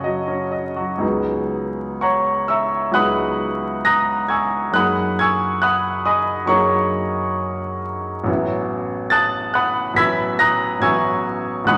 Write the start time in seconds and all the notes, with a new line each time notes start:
Already playing: C#3 F#3 C#4 F#4 C#5 D#5 F#5 A5
0.04 F#3 D#5
0.28 C#4 C#5
0.51 D#5
0.76 F#3 F#4
0.98 C#2 F#3 B3 D#4 G#4
2.01 C#5 F#5 A#5 C#6
2.48 E5 A#5 C#6 E6
2.92 C#2 F#3 B3 D#4 G#4 F#5 B5 D#6 F#6
3.85 A#5 D#6 F#6 A#6
4.28 G#5 C#6 E6 G#6
4.72 F#2 F#3 A#3 D#4 G#4 D#6 F#6
4.76 F#5 B5
5.19 G#5 C#6 E6 G#6
5.62 F#5 B5 D#6 F#6
6.05 D#5 G#5 B5 D#6
6.46 F#2 F#3 A#3 D#4 G#4 C#5 F#5 A#5 C#6
8.24 A1 F#3 B3 C#4 E4
9.10 A5 D#6 F#6 A6
9.54 F#5 B5 D#6 F#6
9.94 A1 F#3 B3 C#4 E4 G#6 B6
9.98 B5 E6
10.39 A#5 D#6 F#6 A#6
10.80 A1 F#3 B3 C#4 E4 G#5 C#6 E6 G#6
11.64 A1 E3 G#3 C#4 D#4 F#5 B5 D#6 F#6